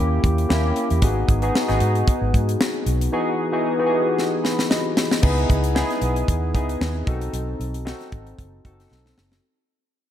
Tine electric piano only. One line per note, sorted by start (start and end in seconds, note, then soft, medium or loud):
0.00 0.49 A#3 medium
0.00 0.49 C#4 medium
0.00 0.50 E4 medium
0.00 0.51 G4 loud
0.49 0.98 A#3 medium
0.49 0.98 C#4 medium
0.49 0.98 E4 medium
0.49 0.99 G4 medium
1.02 1.39 B3 medium
1.02 1.39 D#4 medium
1.02 1.40 F#4 medium
1.02 1.40 G#4 loud
1.42 1.66 B3 medium
1.42 1.67 D#4 medium
1.42 1.67 F#4 medium
1.42 1.67 G#4 medium
1.68 2.64 B3 medium
1.68 2.64 D#4 medium
1.68 2.65 F#4 medium
1.68 2.65 G#4 medium
3.12 3.49 E3 medium
3.12 3.50 B3 medium
3.12 3.50 D#4 medium
3.12 3.50 F#4 medium
3.12 3.50 G#4 loud
3.52 3.77 E3 medium
3.52 3.77 B3 medium
3.52 3.77 D#4 medium
3.52 3.77 F#4 medium
3.52 3.77 G#4 medium
3.79 4.75 E3 medium
3.79 4.75 B3 medium
3.79 4.75 D#4 medium
3.79 4.75 F#4 medium
3.79 3.86 G4 medium
3.87 4.79 G#4 medium
4.44 4.68 B5 medium
4.70 5.19 D#5 medium
5.22 5.71 B3 medium
5.22 5.71 D#4 medium
5.22 5.72 E4 medium
5.22 5.72 G#4 loud
5.75 6.48 B3 medium
5.75 6.48 D#4 medium
5.75 6.48 E4 medium
5.75 6.48 G#4 loud
6.54 7.07 B3 medium
6.54 7.06 D#4 medium
6.54 7.07 E4 medium
6.54 7.07 G#4 medium
7.07 7.80 C4 medium
7.07 7.80 D#4 medium
7.07 7.80 F#4 medium
7.07 7.80 A4 loud
7.85 8.58 C4 medium
7.85 8.58 D#4 medium
7.85 8.59 F#4 medium
7.85 8.59 A4 loud
8.65 9.38 C4 medium
8.65 9.38 D#4 medium
8.65 9.38 F#4 medium
8.65 9.38 A4 medium